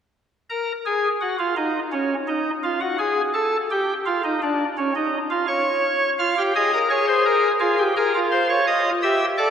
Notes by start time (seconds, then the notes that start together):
0.50 A#4
0.86 G#4
1.21 F#4
1.39 F4
1.56 D#4
1.92 C#4
2.28 D#4
2.63 F4
2.81 F#4
2.99 G#4
3.34 A4
3.71 G4
4.06 F4
4.24 D#4
4.42 D4
4.78 C#4
4.96 D#4
5.30 F4
5.48 C#5
6.19 F4 F5
6.38 G4
6.55 G#4 D#5
6.73 A#4
6.90 G#4 C#5
7.08 C5
7.26 A#4
7.60 F4 G#4
7.78 G4
7.97 G#4 A#4
8.14 F4
8.32 C5
8.50 C#5
8.67 D#5
9.03 G4 E5
9.38 A4 D5